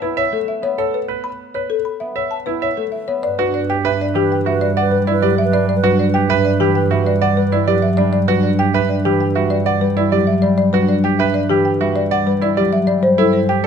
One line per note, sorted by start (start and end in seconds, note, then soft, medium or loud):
0.00 0.31 A3 medium
0.00 0.61 B3 medium
0.00 0.22 E4 medium
0.00 0.22 B4 medium
0.17 0.37 C#5 medium
0.17 0.37 E5 medium
0.32 2.76 A3 medium
0.32 0.52 A4 medium
0.48 0.68 E5 medium
0.62 1.99 B3 medium
0.62 0.77 C#5 medium
0.78 0.98 A4 medium
0.78 0.98 C#5 medium
0.94 1.14 B4 medium
1.08 1.29 B4 medium
1.24 1.44 B5 medium
1.54 1.75 B4 soft
1.54 1.75 C#5 soft
1.70 1.90 A4 medium
1.85 2.05 B5 soft
2.00 2.45 B3 medium
2.00 2.20 E5 medium
2.16 2.36 C#5 medium
2.16 2.36 E5 medium
2.31 2.51 A5 medium
2.46 3.06 B3 medium
2.46 2.67 E4 medium
2.46 2.66 B4 medium
2.62 2.82 C#5 medium
2.62 2.82 E5 medium
2.77 3.25 A3 medium
2.77 2.97 A4 soft
2.92 3.12 E5 medium
3.08 6.98 B3 medium
3.08 3.28 C#5 medium
3.23 12.87 G2 medium
3.23 3.45 B4 soft
3.23 3.43 D5 medium
3.38 3.82 D4 medium
3.38 3.59 F#4 medium
3.38 3.58 B4 medium
3.54 3.77 B4 soft
3.54 3.74 D5 medium
3.70 3.89 G4 medium
3.70 3.89 G5 medium
3.83 5.82 D4 medium
3.83 4.04 B4 medium
3.83 4.09 B4 medium
3.83 4.05 E5 medium
4.01 4.20 D5 medium
4.14 6.59 E3 medium
4.14 4.35 G4 medium
4.19 4.41 B4 medium
4.32 4.51 G5 medium
4.45 4.89 G3 medium
4.45 4.66 F#4 medium
4.45 4.66 E5 medium
4.50 4.72 B4 medium
4.61 4.81 D5 medium
4.77 4.96 D5 medium
4.77 4.96 F#5 medium
4.82 5.04 B4 medium
4.90 5.50 G3 medium
4.90 5.11 B4 medium
5.07 5.27 E4 medium
5.07 5.27 D5 medium
5.13 5.35 B4 medium
5.21 7.66 F#3 medium
5.21 5.43 G4 medium
5.21 5.42 D5 medium
5.38 5.58 E5 medium
5.44 5.67 B4 medium
5.51 6.89 G3 medium
5.51 5.73 D4 medium
5.51 5.68 D5 medium
5.69 5.88 D5 medium
5.76 5.98 B4 medium
5.83 6.28 D4 medium
5.83 6.03 F#4 medium
5.83 6.03 B4 medium
5.99 6.19 D5 medium
6.07 6.30 B4 medium
6.14 6.34 G4 medium
6.14 6.34 G5 medium
6.29 8.27 D4 medium
6.29 6.49 B4 medium
6.29 6.49 E5 medium
6.39 6.61 B4 medium
6.45 6.65 D5 medium
6.60 9.04 E3 medium
6.60 6.80 G4 medium
6.71 6.93 B4 medium
6.75 6.95 G5 medium
6.91 7.35 G3 medium
6.91 7.11 F#4 medium
6.91 7.11 E5 medium
7.03 7.25 B4 medium
7.03 7.26 D5 medium
7.22 7.41 D5 medium
7.22 7.41 F#5 medium
7.34 7.96 G3 medium
7.34 7.56 B4 soft
7.34 7.57 B4 medium
7.52 7.72 E4 medium
7.52 7.72 D5 medium
7.66 10.10 F#3 medium
7.66 7.87 G4 medium
7.66 7.88 B4 soft
7.66 7.87 D5 medium
7.82 8.02 E5 medium
7.97 9.34 G3 medium
7.97 8.18 D4 medium
7.97 8.11 D5 medium
8.13 8.33 D5 medium
8.28 8.73 D4 medium
8.28 8.48 F#4 medium
8.28 8.48 B4 medium
8.43 8.63 D5 medium
8.59 8.79 G4 medium
8.59 8.79 G5 medium
8.74 10.72 D4 medium
8.74 8.94 B4 medium
8.74 8.94 E5 medium
8.89 9.09 D5 medium
9.05 11.48 E3 medium
9.05 9.25 G4 medium
9.20 9.40 G5 medium
9.35 9.79 G3 medium
9.35 9.55 F#4 medium
9.35 9.55 E5 medium
9.50 9.70 D5 medium
9.66 9.86 D5 medium
9.66 9.86 F#5 medium
9.81 10.42 G3 medium
9.81 10.01 B4 medium
9.97 10.17 E4 medium
9.97 10.17 D5 medium
10.11 12.56 F#3 medium
10.11 10.32 G4 medium
10.11 10.32 D5 medium
10.27 10.47 E5 medium
10.42 11.79 G3 medium
10.42 10.56 D5 medium
10.58 10.78 D5 medium
10.73 11.18 D4 medium
10.73 10.93 F#4 medium
10.73 10.93 B4 medium
10.89 11.08 D5 medium
11.04 11.24 G4 medium
11.04 11.24 G5 medium
11.19 13.05 D4 medium
11.19 11.39 B4 medium
11.19 11.39 E5 medium
11.34 11.54 D5 medium
11.50 13.05 E3 medium
11.50 11.70 G4 medium
11.65 11.85 G5 medium
11.80 12.25 G3 medium
11.80 12.00 F#4 medium
11.80 12.00 E5 medium
11.96 12.16 D5 medium
12.11 12.31 D5 medium
12.11 12.31 F#5 medium
12.26 12.86 G3 medium
12.26 12.46 B4 medium
12.41 12.61 E4 medium
12.41 12.62 D5 medium
12.57 13.05 F#3 medium
12.57 12.77 G4 medium
12.57 12.77 D5 medium
12.73 12.92 E5 medium
12.87 13.67 G3 medium
12.87 13.07 D5 medium
13.03 13.67 G2 medium
13.03 13.25 C5 soft
13.03 13.23 C5 medium
13.18 13.67 C4 medium
13.18 13.38 E4 medium
13.18 13.38 A4 medium
13.33 13.53 C5 medium
13.33 13.57 C5 soft
13.49 13.67 G4 medium
13.49 13.67 G5 medium
13.64 13.67 A4 medium
13.64 13.67 D5 medium